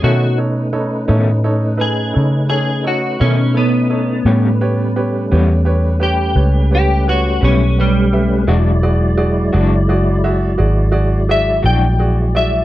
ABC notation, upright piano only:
X:1
M:12/8
L:1/8
Q:3/8=57
K:Bdor
V:1 name="Upright piano"
[^DAc] [DAc] [DAc] [DAc] [DAc] [DAB] [DAc] [DAc] [DAc] [DAc] [DAc] [DAc] | [=GBc] [GBc] [GBc] [GBc] [GBc] [GBc] [GBc] [GBc] [GBc] [GBc] [GBc] [GBe] | [FGd] [FGd] [FGd] [FGd] [FGd] [FGe] [FGd] [FGd] [FGd] [FGd] [FGd] [FGd] |]